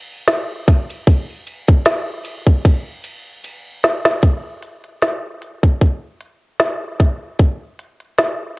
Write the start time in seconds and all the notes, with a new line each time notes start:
0.11 tambourine
0.28 snare, ride, tambourine
0.67 kick, snare, ride, tambourine
0.89 ride, tambourine
1.07 kick, ride, tambourine
1.30 tambourine
1.47 ride, tambourine
1.68 kick, ride
1.86 snare, ride, tambourine
2.24 ride, tambourine
2.47 kick
2.65 kick, ride, tambourine
3.04 ride, tambourine
3.44 ride, tambourine
3.83 snare, ride, tambourine
4.05 snare, tambourine
4.22 kick, closed hi-hat
4.63 closed hi-hat
4.84 closed hi-hat
5.02 snare, closed hi-hat
5.42 closed hi-hat
5.63 kick
5.81 kick, closed hi-hat
6.21 closed hi-hat
6.60 snare, closed hi-hat
7.00 kick, snare, closed hi-hat
7.39 kick, closed hi-hat
7.79 closed hi-hat
8.00 closed hi-hat
8.18 snare, closed hi-hat